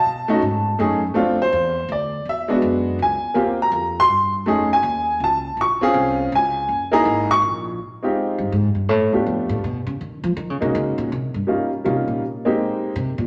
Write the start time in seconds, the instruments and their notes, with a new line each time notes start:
Already playing: upright piano A5
0.06 upright bass B2
0.28 upright piano A3 C#4 D#4 F#4
0.42 upright bass G#2
0.79 upright bass F#2, upright piano A3 C#4 D#4 G#4
1.14 upright bass F2, upright piano A3 C4 D4 F4
1.42 upright piano C5
1.53 upright bass E2
1.89 upright bass D2, upright piano D5
2.25 upright bass E2, upright piano E5
2.48 upright piano G#3 B3 D4 F#4
2.62 upright bass F#2
2.99 upright bass C#2, upright piano G#5
3.34 upright bass D#2, upright piano A#3 C4 F4 G4
3.62 upright piano A#5
3.72 upright bass F2
4.00 upright piano C6
4.08 upright bass G2
4.46 upright bass F2, upright piano A3 C#4 D#4 G#4
4.73 upright piano G#5
4.83 upright bass D#2
5.20 upright bass C#2, upright piano A5
5.57 upright bass A#1
5.61 upright piano C#6
5.81 upright piano C4 C#4 F4 G#4
5.94 upright bass C2
6.32 upright bass C#2, upright piano G#5
6.69 upright bass F#1
6.92 upright piano A#3 D#4 E4 G#4 A#5
7.05 upright bass G#1
7.31 upright piano C#6
7.42 upright bass A#1
8.03 upright piano G#3 C4 D#4 F4 G4
8.38 upright bass G2
8.52 upright bass G#2
8.75 upright bass G2
8.89 upright bass A2
9.12 upright bass D2, upright piano A3 B3 D4 F4 G4
9.26 upright bass F2
9.49 upright bass A2
9.64 upright bass B2
9.87 upright bass C#3
10.01 upright bass D#3
10.23 upright bass F3
10.37 upright bass D#3
10.50 upright bass C#3
10.61 upright bass C3, upright piano G#3 A#3 C#4 D#4 F#4
10.75 upright bass C#3
10.98 upright bass A#2
11.12 upright bass C3
11.34 upright bass G2
11.47 upright piano G3 A#3 C#4 D#4 F4
11.84 upright bass C3, upright piano G3 A#3 C#4 D#4 F4
12.08 upright bass A#2
12.45 upright piano G#3 A#3 C4 D#4 G4
12.96 upright bass C3
13.18 upright bass A#2